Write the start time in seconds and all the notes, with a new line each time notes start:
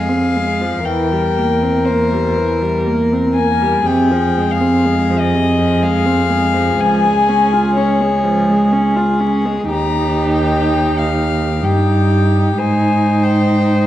Already playing: F2 G#3 G#4 F5
0.09 C4
0.36 G#3
0.61 F3
0.84 E2 E3 A#4 G5
1.12 G3
1.38 A#3
1.63 C4
1.85 A#3 C5
2.12 G3
2.37 E3
2.62 G3
2.87 A#3
3.13 C4
3.35 A#3 G#5
3.62 G3
3.85 F2 C3 G#4 G5
4.11 F3
4.37 G#3
4.51 F5
4.61 C4
4.85 G#3
5.11 F3
5.19 D#5
5.34 C3
5.58 F3
5.82 G#3 F5
6.06 C4
6.30 G#3
6.54 F3
6.80 C#2 F3 G#5
7.05 G#3
7.29 C#4
7.53 F4
7.76 C#4 C#5
8.01 G#3
8.24 F3
8.50 G#3
8.72 C#4
8.97 F4
9.20 C#4
9.45 G#3
9.70 D#2 D#4 G4 A#5
10.34 G5
10.99 F5
11.62 G2 D#4 G4 G5
12.58 G#2 D#4 C5 G#5
13.23 G5